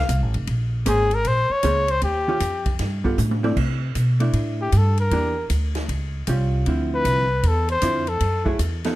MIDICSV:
0, 0, Header, 1, 6, 480
1, 0, Start_track
1, 0, Tempo, 386598
1, 591, Time_signature, 4, 2, 24, 8
1, 11119, End_track
2, 0, Start_track
2, 0, Title_t, "Trumpet"
2, 0, Program_c, 0, 56
2, 0, Note_on_c, 0, 77, 97
2, 428, Note_off_c, 0, 77, 0
2, 1097, Note_on_c, 0, 68, 83
2, 1423, Note_on_c, 0, 70, 85
2, 1441, Note_off_c, 0, 68, 0
2, 1585, Note_on_c, 0, 72, 91
2, 1603, Note_off_c, 0, 70, 0
2, 1886, Note_on_c, 0, 73, 91
2, 1904, Note_off_c, 0, 72, 0
2, 2367, Note_on_c, 0, 72, 93
2, 2386, Note_off_c, 0, 73, 0
2, 2523, Note_off_c, 0, 72, 0
2, 2530, Note_on_c, 0, 67, 82
2, 3430, Note_off_c, 0, 67, 0
2, 5733, Note_on_c, 0, 67, 78
2, 5925, Note_on_c, 0, 69, 69
2, 5944, Note_off_c, 0, 67, 0
2, 6203, Note_off_c, 0, 69, 0
2, 6210, Note_on_c, 0, 70, 80
2, 6800, Note_off_c, 0, 70, 0
2, 8621, Note_on_c, 0, 71, 90
2, 9288, Note_on_c, 0, 69, 76
2, 9307, Note_off_c, 0, 71, 0
2, 9559, Note_off_c, 0, 69, 0
2, 9566, Note_on_c, 0, 72, 88
2, 10041, Note_on_c, 0, 69, 83
2, 10059, Note_off_c, 0, 72, 0
2, 10510, Note_off_c, 0, 69, 0
2, 11119, End_track
3, 0, Start_track
3, 0, Title_t, "Hollow-body jazz guitar"
3, 0, Program_c, 1, 26
3, 1065, Note_on_c, 1, 58, 58
3, 1075, Note_on_c, 1, 61, 66
3, 1076, Note_on_c, 1, 68, 59
3, 1082, Note_on_c, 1, 72, 67
3, 1349, Note_off_c, 1, 58, 0
3, 1354, Note_off_c, 1, 61, 0
3, 1354, Note_off_c, 1, 68, 0
3, 1357, Note_off_c, 1, 72, 0
3, 2033, Note_on_c, 1, 58, 59
3, 2036, Note_on_c, 1, 61, 55
3, 2037, Note_on_c, 1, 68, 65
3, 2045, Note_on_c, 1, 72, 61
3, 2312, Note_off_c, 1, 58, 0
3, 2314, Note_off_c, 1, 61, 0
3, 2315, Note_off_c, 1, 68, 0
3, 2318, Note_off_c, 1, 72, 0
3, 2830, Note_on_c, 1, 51, 58
3, 2836, Note_on_c, 1, 61, 63
3, 2838, Note_on_c, 1, 65, 64
3, 2844, Note_on_c, 1, 67, 73
3, 2977, Note_off_c, 1, 51, 0
3, 2980, Note_off_c, 1, 61, 0
3, 2981, Note_off_c, 1, 65, 0
3, 2984, Note_off_c, 1, 67, 0
3, 3777, Note_on_c, 1, 55, 62
3, 3783, Note_on_c, 1, 59, 61
3, 3792, Note_on_c, 1, 65, 60
3, 3797, Note_on_c, 1, 69, 64
3, 3931, Note_off_c, 1, 55, 0
3, 3934, Note_off_c, 1, 59, 0
3, 3938, Note_off_c, 1, 65, 0
3, 3940, Note_off_c, 1, 69, 0
3, 4261, Note_on_c, 1, 60, 50
3, 4268, Note_on_c, 1, 64, 58
3, 4274, Note_on_c, 1, 69, 63
3, 4280, Note_on_c, 1, 74, 65
3, 4413, Note_off_c, 1, 60, 0
3, 4416, Note_off_c, 1, 64, 0
3, 4419, Note_off_c, 1, 69, 0
3, 4422, Note_off_c, 1, 74, 0
3, 5216, Note_on_c, 1, 57, 49
3, 5223, Note_on_c, 1, 62, 57
3, 5230, Note_on_c, 1, 64, 57
3, 5834, Note_off_c, 1, 57, 0
3, 5837, Note_off_c, 1, 62, 0
3, 5840, Note_off_c, 1, 64, 0
3, 6355, Note_on_c, 1, 52, 48
3, 6366, Note_on_c, 1, 58, 48
3, 6369, Note_on_c, 1, 62, 54
3, 6370, Note_on_c, 1, 67, 58
3, 6633, Note_off_c, 1, 52, 0
3, 6639, Note_off_c, 1, 58, 0
3, 6641, Note_off_c, 1, 62, 0
3, 6641, Note_off_c, 1, 67, 0
3, 7796, Note_on_c, 1, 55, 53
3, 7813, Note_on_c, 1, 61, 58
3, 7814, Note_on_c, 1, 65, 59
3, 8273, Note_off_c, 1, 55, 0
3, 8278, Note_on_c, 1, 50, 48
3, 8281, Note_off_c, 1, 61, 0
3, 8282, Note_off_c, 1, 65, 0
3, 8288, Note_on_c, 1, 53, 53
3, 8289, Note_on_c, 1, 60, 52
3, 8296, Note_on_c, 1, 64, 58
3, 9003, Note_off_c, 1, 50, 0
3, 9008, Note_off_c, 1, 53, 0
3, 9009, Note_off_c, 1, 60, 0
3, 9012, Note_off_c, 1, 64, 0
3, 9715, Note_on_c, 1, 50, 61
3, 9721, Note_on_c, 1, 53, 56
3, 9723, Note_on_c, 1, 64, 65
3, 9724, Note_on_c, 1, 60, 59
3, 9992, Note_off_c, 1, 50, 0
3, 9996, Note_off_c, 1, 53, 0
3, 9997, Note_off_c, 1, 60, 0
3, 9997, Note_off_c, 1, 64, 0
3, 10493, Note_on_c, 1, 54, 54
3, 10500, Note_on_c, 1, 57, 65
3, 10504, Note_on_c, 1, 64, 59
3, 10508, Note_on_c, 1, 68, 57
3, 10647, Note_off_c, 1, 54, 0
3, 10651, Note_off_c, 1, 57, 0
3, 10653, Note_off_c, 1, 64, 0
3, 10655, Note_off_c, 1, 68, 0
3, 10988, Note_on_c, 1, 53, 67
3, 10992, Note_on_c, 1, 59, 66
3, 10996, Note_on_c, 1, 63, 68
3, 11002, Note_on_c, 1, 69, 77
3, 11119, Note_off_c, 1, 53, 0
3, 11119, Note_off_c, 1, 59, 0
3, 11119, Note_off_c, 1, 63, 0
3, 11119, Note_off_c, 1, 69, 0
3, 11119, End_track
4, 0, Start_track
4, 0, Title_t, "Upright bass"
4, 0, Program_c, 2, 32
4, 109, Note_on_c, 2, 36, 87
4, 274, Note_off_c, 2, 36, 0
4, 274, Note_on_c, 2, 33, 55
4, 426, Note_off_c, 2, 33, 0
4, 434, Note_on_c, 2, 29, 61
4, 581, Note_off_c, 2, 29, 0
4, 590, Note_on_c, 2, 34, 75
4, 1056, Note_off_c, 2, 34, 0
4, 1071, Note_on_c, 2, 32, 81
4, 1536, Note_off_c, 2, 32, 0
4, 1551, Note_on_c, 2, 34, 81
4, 1841, Note_off_c, 2, 34, 0
4, 2028, Note_on_c, 2, 37, 90
4, 2495, Note_off_c, 2, 37, 0
4, 2507, Note_on_c, 2, 39, 73
4, 2974, Note_off_c, 2, 39, 0
4, 2985, Note_on_c, 2, 41, 80
4, 3453, Note_off_c, 2, 41, 0
4, 3469, Note_on_c, 2, 43, 78
4, 3935, Note_off_c, 2, 43, 0
4, 3948, Note_on_c, 2, 45, 89
4, 4415, Note_off_c, 2, 45, 0
4, 4422, Note_on_c, 2, 48, 71
4, 4891, Note_off_c, 2, 48, 0
4, 4907, Note_on_c, 2, 47, 77
4, 5371, Note_off_c, 2, 47, 0
4, 5379, Note_on_c, 2, 45, 75
4, 5850, Note_off_c, 2, 45, 0
4, 5865, Note_on_c, 2, 43, 88
4, 6333, Note_off_c, 2, 43, 0
4, 6344, Note_on_c, 2, 40, 68
4, 6813, Note_off_c, 2, 40, 0
4, 6826, Note_on_c, 2, 38, 76
4, 7293, Note_off_c, 2, 38, 0
4, 7306, Note_on_c, 2, 37, 82
4, 7773, Note_off_c, 2, 37, 0
4, 7792, Note_on_c, 2, 36, 86
4, 8257, Note_off_c, 2, 36, 0
4, 8273, Note_on_c, 2, 38, 77
4, 8737, Note_off_c, 2, 38, 0
4, 8748, Note_on_c, 2, 36, 83
4, 9214, Note_off_c, 2, 36, 0
4, 9228, Note_on_c, 2, 40, 79
4, 9694, Note_off_c, 2, 40, 0
4, 9707, Note_on_c, 2, 41, 91
4, 10173, Note_off_c, 2, 41, 0
4, 10190, Note_on_c, 2, 42, 74
4, 10655, Note_off_c, 2, 42, 0
4, 10665, Note_on_c, 2, 40, 80
4, 11119, Note_off_c, 2, 40, 0
4, 11119, End_track
5, 0, Start_track
5, 0, Title_t, "Muted upright bass strokes"
5, 1860, Note_on_c, 9, 29, 37
5, 1984, Note_off_c, 9, 29, 0
5, 11119, End_track
6, 0, Start_track
6, 0, Title_t, "Drums"
6, 111, Note_on_c, 9, 44, 49
6, 111, Note_on_c, 9, 51, 61
6, 115, Note_on_c, 9, 36, 23
6, 235, Note_off_c, 9, 44, 0
6, 235, Note_off_c, 9, 51, 0
6, 239, Note_off_c, 9, 36, 0
6, 423, Note_on_c, 9, 51, 43
6, 547, Note_off_c, 9, 51, 0
6, 587, Note_on_c, 9, 51, 51
6, 594, Note_on_c, 9, 36, 18
6, 711, Note_off_c, 9, 51, 0
6, 719, Note_off_c, 9, 36, 0
6, 1067, Note_on_c, 9, 44, 56
6, 1067, Note_on_c, 9, 51, 69
6, 1074, Note_on_c, 9, 36, 22
6, 1191, Note_off_c, 9, 44, 0
6, 1191, Note_off_c, 9, 51, 0
6, 1198, Note_off_c, 9, 36, 0
6, 1378, Note_on_c, 9, 51, 42
6, 1502, Note_off_c, 9, 51, 0
6, 1548, Note_on_c, 9, 51, 55
6, 1553, Note_on_c, 9, 36, 18
6, 1672, Note_off_c, 9, 51, 0
6, 1677, Note_off_c, 9, 36, 0
6, 2021, Note_on_c, 9, 44, 59
6, 2021, Note_on_c, 9, 51, 62
6, 2031, Note_on_c, 9, 36, 22
6, 2145, Note_off_c, 9, 44, 0
6, 2145, Note_off_c, 9, 51, 0
6, 2155, Note_off_c, 9, 36, 0
6, 2337, Note_on_c, 9, 51, 46
6, 2461, Note_off_c, 9, 51, 0
6, 2503, Note_on_c, 9, 51, 54
6, 2512, Note_on_c, 9, 36, 18
6, 2627, Note_off_c, 9, 51, 0
6, 2636, Note_off_c, 9, 36, 0
6, 2983, Note_on_c, 9, 44, 55
6, 2983, Note_on_c, 9, 51, 61
6, 2991, Note_on_c, 9, 36, 19
6, 3107, Note_off_c, 9, 44, 0
6, 3107, Note_off_c, 9, 51, 0
6, 3116, Note_off_c, 9, 36, 0
6, 3298, Note_on_c, 9, 51, 44
6, 3303, Note_on_c, 9, 36, 61
6, 3423, Note_off_c, 9, 51, 0
6, 3427, Note_off_c, 9, 36, 0
6, 3464, Note_on_c, 9, 51, 60
6, 3469, Note_on_c, 9, 38, 35
6, 3471, Note_on_c, 9, 36, 23
6, 3588, Note_off_c, 9, 51, 0
6, 3593, Note_off_c, 9, 38, 0
6, 3596, Note_off_c, 9, 36, 0
6, 3784, Note_on_c, 9, 36, 48
6, 3908, Note_off_c, 9, 36, 0
6, 3947, Note_on_c, 9, 44, 60
6, 3952, Note_on_c, 9, 48, 44
6, 4071, Note_off_c, 9, 44, 0
6, 4076, Note_off_c, 9, 48, 0
6, 4111, Note_on_c, 9, 48, 54
6, 4235, Note_off_c, 9, 48, 0
6, 4272, Note_on_c, 9, 48, 73
6, 4396, Note_off_c, 9, 48, 0
6, 4429, Note_on_c, 9, 49, 60
6, 4430, Note_on_c, 9, 36, 60
6, 4553, Note_off_c, 9, 49, 0
6, 4554, Note_off_c, 9, 36, 0
6, 4906, Note_on_c, 9, 44, 59
6, 4906, Note_on_c, 9, 51, 57
6, 4911, Note_on_c, 9, 36, 23
6, 5030, Note_off_c, 9, 44, 0
6, 5030, Note_off_c, 9, 51, 0
6, 5035, Note_off_c, 9, 36, 0
6, 5217, Note_on_c, 9, 51, 40
6, 5341, Note_off_c, 9, 51, 0
6, 5382, Note_on_c, 9, 51, 55
6, 5388, Note_on_c, 9, 36, 20
6, 5506, Note_off_c, 9, 51, 0
6, 5512, Note_off_c, 9, 36, 0
6, 5864, Note_on_c, 9, 44, 57
6, 5864, Note_on_c, 9, 51, 60
6, 5869, Note_on_c, 9, 36, 16
6, 5988, Note_off_c, 9, 44, 0
6, 5988, Note_off_c, 9, 51, 0
6, 5993, Note_off_c, 9, 36, 0
6, 6177, Note_on_c, 9, 51, 42
6, 6301, Note_off_c, 9, 51, 0
6, 6348, Note_on_c, 9, 51, 56
6, 6350, Note_on_c, 9, 36, 21
6, 6472, Note_off_c, 9, 51, 0
6, 6474, Note_off_c, 9, 36, 0
6, 6826, Note_on_c, 9, 44, 47
6, 6826, Note_on_c, 9, 51, 67
6, 6831, Note_on_c, 9, 36, 23
6, 6950, Note_off_c, 9, 44, 0
6, 6950, Note_off_c, 9, 51, 0
6, 6955, Note_off_c, 9, 36, 0
6, 7138, Note_on_c, 9, 51, 43
6, 7143, Note_on_c, 9, 38, 47
6, 7262, Note_off_c, 9, 51, 0
6, 7267, Note_off_c, 9, 38, 0
6, 7313, Note_on_c, 9, 36, 19
6, 7313, Note_on_c, 9, 51, 56
6, 7437, Note_off_c, 9, 36, 0
6, 7437, Note_off_c, 9, 51, 0
6, 7784, Note_on_c, 9, 44, 52
6, 7784, Note_on_c, 9, 51, 64
6, 7792, Note_on_c, 9, 36, 23
6, 7908, Note_off_c, 9, 44, 0
6, 7908, Note_off_c, 9, 51, 0
6, 7917, Note_off_c, 9, 36, 0
6, 8270, Note_on_c, 9, 51, 53
6, 8274, Note_on_c, 9, 36, 19
6, 8394, Note_off_c, 9, 51, 0
6, 8398, Note_off_c, 9, 36, 0
6, 8753, Note_on_c, 9, 36, 22
6, 8753, Note_on_c, 9, 44, 53
6, 8753, Note_on_c, 9, 51, 62
6, 8877, Note_off_c, 9, 36, 0
6, 8877, Note_off_c, 9, 44, 0
6, 8877, Note_off_c, 9, 51, 0
6, 9231, Note_on_c, 9, 51, 57
6, 9233, Note_on_c, 9, 36, 25
6, 9355, Note_off_c, 9, 51, 0
6, 9357, Note_off_c, 9, 36, 0
6, 9543, Note_on_c, 9, 51, 42
6, 9667, Note_off_c, 9, 51, 0
6, 9704, Note_on_c, 9, 44, 56
6, 9704, Note_on_c, 9, 51, 68
6, 9710, Note_on_c, 9, 36, 19
6, 9829, Note_off_c, 9, 44, 0
6, 9829, Note_off_c, 9, 51, 0
6, 9834, Note_off_c, 9, 36, 0
6, 10019, Note_on_c, 9, 51, 41
6, 10143, Note_off_c, 9, 51, 0
6, 10187, Note_on_c, 9, 51, 60
6, 10190, Note_on_c, 9, 36, 22
6, 10311, Note_off_c, 9, 51, 0
6, 10314, Note_off_c, 9, 36, 0
6, 10501, Note_on_c, 9, 36, 47
6, 10625, Note_off_c, 9, 36, 0
6, 10668, Note_on_c, 9, 44, 55
6, 10668, Note_on_c, 9, 51, 65
6, 10669, Note_on_c, 9, 36, 24
6, 10792, Note_off_c, 9, 44, 0
6, 10792, Note_off_c, 9, 51, 0
6, 10793, Note_off_c, 9, 36, 0
6, 10980, Note_on_c, 9, 51, 44
6, 10985, Note_on_c, 9, 38, 36
6, 11105, Note_off_c, 9, 51, 0
6, 11110, Note_off_c, 9, 38, 0
6, 11119, End_track
0, 0, End_of_file